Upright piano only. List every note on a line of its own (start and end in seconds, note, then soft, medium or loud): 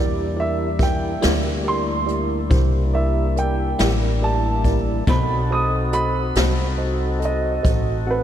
0.00 0.35 D5 medium
0.40 0.80 E5 medium
0.83 1.64 G5 medium
1.68 2.08 C6 medium
2.95 3.36 E5 medium
3.39 4.21 G5 medium
4.24 5.06 A5 medium
5.09 5.50 B5 medium
5.52 5.93 D#6 medium
5.93 6.77 B5 medium
7.25 8.07 D#5 medium
8.10 8.23 B4 medium